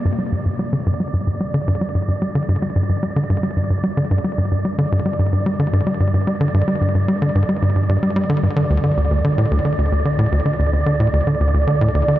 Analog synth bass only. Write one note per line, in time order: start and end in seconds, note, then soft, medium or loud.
0.05 0.14 G2 loud
0.19 0.28 G3 medium
0.32 0.45 G2 medium
0.46 0.59 G2 medium
0.59 0.72 G3 medium
0.73 0.82 D3 loud
0.86 0.95 G2 loud
1.00 1.09 G3 medium
1.13 1.26 G2 medium
1.27 1.40 G2 medium
1.40 1.53 G3 medium
1.54 1.63 D3 loud
1.68 1.77 G2 loud
1.81 1.90 G3 medium
1.95 2.07 G2 medium
2.08 2.21 G2 medium
2.22 2.34 G3 medium
2.35 2.44 D3 loud
2.49 2.58 G2 loud
2.62 2.71 G3 medium
2.76 2.88 G2 medium
2.89 3.02 G2 medium
3.03 3.15 G3 medium
3.16 3.25 D3 loud
3.30 3.39 G2 loud
3.43 3.52 G3 medium
3.57 3.70 G2 medium
3.70 3.83 G2 medium
3.84 3.97 G3 medium
3.97 4.06 D3 loud
4.11 4.20 G2 loud
4.24 4.33 G3 medium
4.38 4.51 G2 medium
4.51 4.64 G2 medium
4.65 4.78 G3 medium
4.78 4.87 D3 loud
4.92 5.01 G2 loud
5.06 5.14 G3 medium
5.19 5.32 G2 medium
5.33 5.45 G2 medium
5.46 5.59 G3 medium
5.60 5.68 D3 loud
5.73 5.82 G2 loud
5.87 5.95 G3 medium
6.00 6.13 G2 medium
6.14 6.26 G2 medium
6.27 6.40 G3 medium
6.41 6.49 D3 loud
6.54 6.63 G2 loud
6.68 6.77 G3 medium
6.81 6.94 G2 medium
6.95 7.07 G2 medium
7.08 7.21 G3 medium
7.22 7.31 D3 loud
7.35 7.44 G2 loud
7.49 7.58 G3 medium
7.62 7.75 G2 medium
7.76 7.88 G2 medium
7.89 7.98 G2 loud
8.03 8.16 G3 medium
8.16 8.25 G3 loud
8.30 8.43 D3 loud
8.43 8.49 G2 medium
8.57 8.66 D3 loud
8.70 8.79 D2 loud
8.84 8.93 D3 medium
8.97 9.10 D2 medium
9.11 9.24 D2 medium
9.24 9.37 D3 medium
9.38 9.47 A2 loud
9.51 9.60 D2 loud
9.65 9.74 D3 medium
9.78 9.91 D2 medium
9.92 10.05 D2 medium
10.05 10.18 D3 medium
10.19 10.28 A2 loud
10.32 10.41 D2 loud
10.46 10.55 D3 medium
10.59 10.72 D2 medium
10.73 10.86 D2 medium
10.86 10.99 D3 medium
11.00 11.09 A2 loud
11.14 11.22 D2 loud
11.27 11.36 D3 medium
11.41 11.53 D2 medium
11.54 11.67 D2 medium
11.68 11.80 D3 medium
11.81 11.90 A2 loud
11.95 12.03 D2 loud
12.08 12.17 D3 medium